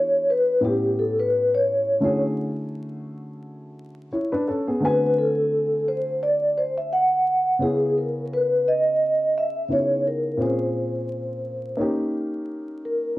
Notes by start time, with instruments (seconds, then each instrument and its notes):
Already playing: upright piano E3 B3 D4 F#4 G4, vibraphone C#5
0.30 vibraphone B4
0.61 upright piano A2 B3 C#4 E4
0.65 vibraphone G4, upright piano G4
0.99 vibraphone A4
1.19 vibraphone B4
1.55 vibraphone C#5
2.00 upright piano D3 A3 C#4 E4 F#4
2.04 upright piano G#4
4.12 upright piano E4 C#5
4.32 upright piano D4 B4
4.48 upright piano C#4 A4
4.67 upright piano B3 G#4
4.80 upright piano D3 A3 C4 F#4
4.85 vibraphone B4, upright piano G#5
5.18 vibraphone A4
5.88 vibraphone C5
6.23 vibraphone D5
6.57 vibraphone C5
6.78 vibraphone E5
6.93 vibraphone F#5
7.59 upright piano C#3 B3 C#4 E4, vibraphone G#4
7.63 upright piano G#4
7.98 vibraphone A#4
8.26 vibraphone A#4
8.33 vibraphone B4
8.68 vibraphone D#5
9.38 vibraphone E5
9.69 upright piano C#3 B3 D#4 E4 F#4
9.73 vibraphone C#5
9.77 upright piano G#4
10.08 vibraphone A#4
10.37 upright piano A#2 C4 C#4 F4
10.42 upright piano G#4, vibraphone C5
11.77 upright piano A#3 C#4 D#4
11.81 upright piano G4
12.85 vibraphone A#4